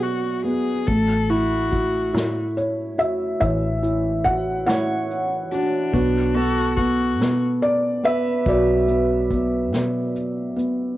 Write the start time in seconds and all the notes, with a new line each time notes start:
Already playing: B2 F#3 B3 F#4 B4 D5 F#5
0.03 F#4, closed hi-hat
0.44 F#2 B3 G#4, closed hi-hat
0.87 A1 A3 A4, kick, closed hi-hat
1.30 E4 F#4, closed hi-hat
1.71 F#4, kick, closed hi-hat
2.13 A2 E4, snare, closed hi-hat
2.57 C#5, closed hi-hat
2.98 E2 F#4 E5, closed hi-hat
3.40 A1 E3 C#5 E5, kick, closed hi-hat
3.83 E4, closed hi-hat
4.24 F#4 F#5, kick, closed hi-hat
4.66 A2 E4 C#5 F#5, snare, closed hi-hat
5.10 closed hi-hat
5.52 A#1 D4 F#4, closed hi-hat
5.93 B1 B3 F#4, kick, closed hi-hat
6.35 B3 F#4 A4, closed hi-hat
6.76 B3 F#4, kick, closed hi-hat
7.20 B2 B3, snare, closed hi-hat
7.62 D5, closed hi-hat
8.04 F#2 B3 B4 E5, closed hi-hat
8.46 B1 F#3 F#4 B4 D5, kick, closed hi-hat
8.88 B3, closed hi-hat
9.30 B3, kick, closed hi-hat
9.72 B2 B3, snare, closed hi-hat
10.15 closed hi-hat
10.56 B1 B3, closed hi-hat